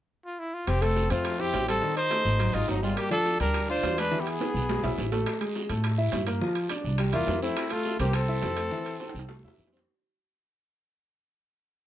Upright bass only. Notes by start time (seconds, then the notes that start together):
0.68 F1
1.11 F2
1.54 A1
2.25 G#1
2.54 G#1
2.68 G1
3.40 D2
3.83 E2
4.54 B1
4.84 B1
4.98 A1
5.70 A2
6.13 G2
6.84 C2
7.13 E2
7.28 F2
7.99 C2
8.43 F2
9.15 C2
9.44 E2
9.58 F2